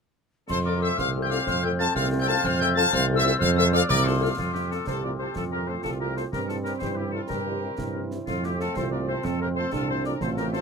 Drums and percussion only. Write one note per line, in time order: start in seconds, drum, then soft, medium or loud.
0.50 concert bass drum medium
0.50 snare medium
0.50 crash medium
0.99 concert bass drum medium
0.99 snare medium
1.31 snare soft
1.47 concert bass drum medium
1.47 snare medium
1.80 snare medium
1.96 concert bass drum medium
1.96 snare medium
2.44 concert bass drum medium
2.44 snare medium
2.44 crash soft
2.93 concert bass drum medium
2.93 snare medium
3.26 snare medium
3.42 concert bass drum loud
3.42 snare medium
3.74 snare medium
3.90 concert bass drum medium
3.90 snare medium
4.39 concert bass drum medium
4.39 snare medium
4.39 crash soft
4.55 snare soft
4.72 snare soft
4.87 concert bass drum medium
4.87 snare medium
5.36 concert bass drum medium
5.36 snare medium
5.85 concert bass drum medium
5.85 snare medium
6.17 snare soft
6.33 concert bass drum medium
6.33 snare medium
6.49 snare medium
6.66 snare medium
6.82 concert bass drum medium
6.82 snare medium
7.30 concert bass drum medium
7.30 snare medium
7.78 concert bass drum medium
7.78 snare medium
8.11 snare soft
8.27 concert bass drum medium
8.27 snare medium
8.27 crash soft
8.44 snare soft
8.60 snare soft
8.76 concert bass drum medium
8.76 snare medium
9.25 concert bass drum medium
9.25 snare medium
9.73 concert bass drum medium
9.73 snare medium
10.04 snare soft
10.21 concert bass drum medium
10.21 snare medium
10.37 snare medium
10.54 snare medium